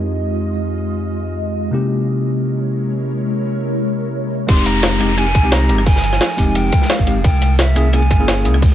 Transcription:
Already playing: tine electric piano F2 G#3 C4 D#4 G4, ambient pad G#3 F4 D#5
1.71 tine electric piano C3 G#3 A#3 C#4 E4 G4, ambient pad G#3 E4 A#4 C#5
4.47 sub bass F1, ambient pad F3 G#3 D#4, tine electric piano G#3 C4 D#4 G4, flute C6, kick, closed hi-hat, crash, ride, downlifter
4.66 flute A#5, closed hi-hat, ride, shaker
4.83 snare, closed hi-hat, ride
5.00 sub bass F1, tine electric piano G#3 C4 D#4 G4, cross-stick, closed hi-hat, ride, shaker
5.17 tine electric piano G#3 C4 D#4 G4, flute G#5, cross-stick, closed hi-hat, ride
5.26 ride
5.35 sub bass C2, kick, closed hi-hat, ride, shaker
5.43 tine electric piano G#3 C4 D#4 G4
5.52 flute A#5, snare, closed hi-hat, ride
5.68 sub bass G1, tine electric piano G#3 C4 D#4 G4, closed hi-hat, ride, shaker
5.78 cross-stick
5.86 flute G#5, kick, closed hi-hat, open hi-hat
5.96 snare
6.04 closed hi-hat, ride, shaker
6.13 cross-stick, snare
6.21 snare, closed hi-hat, ride
6.37 sub bass F1, tine electric piano G#3 C4 D#4 G4, kick, open hi-hat, ride, shaker
6.55 flute G5, closed hi-hat, ride
6.72 kick, closed hi-hat, ride, shaker
6.82 snare
6.90 flute F5, snare, closed hi-hat, ride
6.99 sub bass G#1, kick
7.06 tine electric piano G#3 C4 D#4 G4, closed hi-hat, ride, shaker
7.16 sub bass D#1
7.24 sub bass C2, ambient pad E3 A#3 C#4, flute G5, kick, closed hi-hat, ride
7.42 closed hi-hat, ride, shaker
7.59 flute E5, snare, closed hi-hat, ride
7.75 sub bass C2, tine electric piano A#3 C#4 E4 G#4, cross-stick, closed hi-hat, ride, shaker
7.93 tine electric piano A#3 C#4 E4 G#4, flute G#5, cross-stick, closed hi-hat, ride
8.02 ride
8.11 sub bass G1, kick, closed hi-hat, ride, shaker
8.19 tine electric piano A#3 C#4 E4 G#4
8.28 snare, closed hi-hat, ride
8.44 sub bass C#2, tine electric piano A#3 C#4 E4 G#4, closed hi-hat, ride, shaker
8.54 cross-stick
8.62 kick, closed hi-hat, open hi-hat

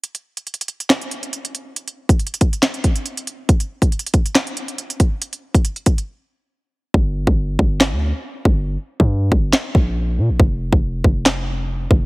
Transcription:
0.04 closed hi-hat
0.15 closed hi-hat
0.37 closed hi-hat
0.47 closed hi-hat
0.54 closed hi-hat
0.61 closed hi-hat
0.68 closed hi-hat
0.80 closed hi-hat
0.90 snare, clap, closed hi-hat
1.01 closed hi-hat
1.11 closed hi-hat
1.23 closed hi-hat
1.33 closed hi-hat
1.45 closed hi-hat
1.55 closed hi-hat
1.76 closed hi-hat
1.88 closed hi-hat
2.09 kick, closed hi-hat
2.19 closed hi-hat
2.27 closed hi-hat
2.34 closed hi-hat
2.41 kick, closed hi-hat
2.53 closed hi-hat
2.63 snare, clap, closed hi-hat
2.74 closed hi-hat
2.84 kick, closed hi-hat
2.96 closed hi-hat
3.06 closed hi-hat
3.17 closed hi-hat
3.27 closed hi-hat
3.49 kick, closed hi-hat
3.60 closed hi-hat
3.82 kick, closed hi-hat
3.92 closed hi-hat
3.99 closed hi-hat
4.06 closed hi-hat
4.14 kick, closed hi-hat
4.26 closed hi-hat
4.35 snare, clap, closed hi-hat
4.47 closed hi-hat
4.57 closed hi-hat
4.68 closed hi-hat
4.78 closed hi-hat
4.90 closed hi-hat
5.00 kick, closed hi-hat
5.22 closed hi-hat
5.33 closed hi-hat
5.54 kick, closed hi-hat
5.65 closed hi-hat
5.76 closed hi-hat
5.86 kick, closed hi-hat
5.98 closed hi-hat
6.94 808-style bass G1, kick
7.27 808-style bass G1, kick
7.59 808-style bass G1, kick
7.80 snare, clap
7.92 808-style bass D2
8.45 808-style bass G1, kick
9.00 808-style bass G2, kick
9.32 808-style bass G1, kick
9.53 snare, clap
9.75 808-style bass A#1, kick
10.18 808-style bass A#2
10.30 808-style bass A#1
10.40 808-style bass F1, kick
10.72 808-style bass F1, kick
11.04 808-style bass F1, kick
11.26 snare, clap
11.91 808-style bass F1, kick

